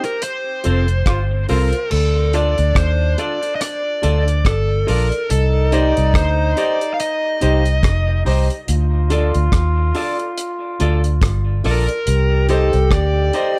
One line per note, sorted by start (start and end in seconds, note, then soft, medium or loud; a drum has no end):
0.03 0.11 G4 soft
0.03 0.23 A#4 medium
0.03 0.11 C5 soft
0.03 closed hi-hat medium
0.22 1.46 C5 medium
0.22 closed hi-hat loud
0.64 1.04 F1 medium
0.64 0.85 C4 medium
0.64 0.85 F4 medium
0.64 0.85 A4 medium
0.64 0.86 A4 loud
0.64 0.86 C5 medium
0.64 closed hi-hat medium
0.88 closed hi-hat medium
1.06 1.45 G1 medium
1.06 1.21 F4 loud
1.06 kick loud
1.06 cross-stick loud
1.06 closed hi-hat medium
1.31 muted clean electric guitar stroke soft
1.49 1.71 C2 medium
1.49 1.70 C4 medium
1.49 1.77 F4 loud
1.49 1.70 F4 loud
1.49 1.70 F4 medium
1.49 1.70 A4 medium
1.49 1.91 A#4 medium
1.49 1.71 C5 loud
1.49 1.70 C5 medium
1.49 open hi-hat medium
1.73 closed hi-hat medium
1.91 2.54 D2 loud
1.91 4.84 D4 loud
1.91 2.35 A4 medium
1.91 crash loud
2.33 2.54 D4 medium
2.33 2.55 F4 medium
2.33 2.55 A4 medium
2.33 2.55 A4 loud
2.33 2.78 D5 medium
2.33 2.55 D5 loud
2.33 closed hi-hat medium
2.58 2.75 D2 medium
2.58 closed hi-hat soft
2.75 3.14 D#2 medium
2.75 3.20 C5 medium
2.75 kick loud
2.75 cross-stick loud
2.75 closed hi-hat medium
3.18 3.39 D4 medium
3.18 3.39 F4 medium
3.18 3.39 A4 medium
3.18 3.40 D5 loud
3.18 3.55 D5 medium
3.18 3.40 D5 medium
3.18 closed hi-hat medium
3.43 3.50 A4 soft
3.43 3.50 D5 soft
3.43 closed hi-hat medium
3.55 3.61 D#5 medium
3.61 4.48 D5 loud
3.61 cross-stick medium
3.61 closed hi-hat loud
4.02 4.42 D2 medium
4.02 4.23 D4 medium
4.02 4.23 F4 medium
4.02 4.24 F4 medium
4.02 4.24 A4 medium
4.02 4.24 A4 loud
4.02 4.24 D5 loud
4.02 closed hi-hat medium
4.28 closed hi-hat medium
4.45 4.84 G1 loud
4.45 4.88 A4 medium
4.45 kick loud
4.45 cross-stick loud
4.45 closed hi-hat medium
4.87 5.10 A#1 medium
4.87 5.08 D4 medium
4.87 5.08 F4 loud
4.87 5.08 F4 medium
4.87 5.09 A4 medium
4.87 5.30 A#4 medium
4.87 5.09 D5 loud
4.87 5.09 D5 medium
4.87 open hi-hat medium
5.11 muted clean electric guitar stroke soft
5.11 closed hi-hat medium
5.30 5.93 C2 loud
5.30 8.22 D#4 loud
5.30 5.74 A4 loud
5.30 closed hi-hat loud
5.72 5.93 D#4 medium
5.72 5.93 G4 medium
5.72 5.94 C5 loud
5.72 5.93 C5 loud
5.72 6.16 D5 loud
5.72 5.94 D#5 loud
5.72 closed hi-hat medium
5.97 6.14 C2 medium
5.97 closed hi-hat medium
6.14 6.53 D2 loud
6.14 6.59 C5 loud
6.14 kick loud
6.14 cross-stick loud
6.14 closed hi-hat medium
6.56 6.77 D#4 loud
6.56 6.77 D#4 medium
6.56 6.78 G4 medium
6.56 6.78 C5 loud
6.56 6.78 C5 medium
6.56 6.93 D5 medium
6.56 6.78 D#5 medium
6.56 closed hi-hat medium
6.81 6.88 G4 soft
6.81 6.88 C5 soft
6.81 closed hi-hat medium
6.94 6.99 F5 medium
7.00 8.23 D#5 loud
7.00 closed hi-hat medium
7.41 7.80 C2 medium
7.41 7.62 D#4 medium
7.41 7.62 G4 medium
7.41 7.62 G4 loud
7.41 7.63 C5 loud
7.41 7.62 C5 medium
7.41 7.63 D#5 medium
7.41 closed hi-hat medium
7.65 closed hi-hat medium
7.83 8.22 F1 medium
7.83 kick loud
7.83 cross-stick loud
7.83 closed hi-hat medium
8.08 muted clean electric guitar stroke medium
8.25 8.48 C2 medium
8.25 8.47 D#4 loud
8.25 8.46 D#4 medium
8.25 8.47 G4 medium
8.25 8.47 C5 loud
8.25 8.47 C5 medium
8.25 8.47 D#5 medium
8.25 open hi-hat medium
8.50 closed hi-hat medium
8.68 9.31 D2 loud
8.68 11.60 F4 loud
8.68 closed hi-hat medium
9.10 9.31 D4 loud
9.10 9.31 F4 medium
9.10 9.32 A4 medium
9.10 9.32 A4 loud
9.10 9.32 D5 loud
9.10 closed hi-hat medium
9.34 9.52 D2 medium
9.34 closed hi-hat soft
9.52 9.91 D#2 loud
9.52 kick loud
9.52 cross-stick loud
9.52 closed hi-hat medium
9.95 10.15 D4 medium
9.95 10.16 F4 medium
9.95 10.16 A4 medium
9.95 10.17 D5 loud
9.95 10.16 D5 loud
9.95 open hi-hat soft
10.19 10.27 A4 soft
10.19 10.27 D5 soft
10.19 closed hi-hat medium
10.38 closed hi-hat loud
10.80 11.19 D2 loud
10.80 11.00 D4 medium
10.80 11.01 F4 medium
10.80 11.01 A4 medium
10.80 11.01 A4 loud
10.80 11.01 D5 loud
10.80 closed hi-hat medium
11.04 closed hi-hat medium
11.22 11.61 G1 loud
11.22 kick loud
11.22 cross-stick loud
11.22 closed hi-hat medium
11.64 11.87 A#1 loud
11.64 11.85 D4 medium
11.64 11.85 F4 medium
11.64 11.85 A4 medium
11.64 11.86 A4 medium
11.64 12.46 A#4 medium
11.64 11.86 D5 loud
11.64 open hi-hat medium
11.89 muted clean electric guitar stroke soft
11.89 closed hi-hat medium
12.06 12.69 C2 loud
12.06 13.59 G4 loud
12.06 closed hi-hat medium
12.49 12.70 D#4 medium
12.49 12.70 G4 medium
12.49 12.93 A4 medium
12.49 12.71 C5 loud
12.49 12.70 C5 medium
12.49 12.70 D#5 medium
12.49 closed hi-hat medium
12.73 12.90 C2 medium
12.73 closed hi-hat soft
12.91 13.30 D2 loud
12.91 13.59 D5 loud
12.91 kick loud
12.91 cross-stick loud
12.91 closed hi-hat medium
13.33 13.55 D#4 medium
13.33 13.54 D#4 medium
13.33 13.55 G4 medium
13.33 13.55 G4 loud
13.33 13.55 C5 loud
13.33 13.55 D#5 loud
13.33 closed hi-hat medium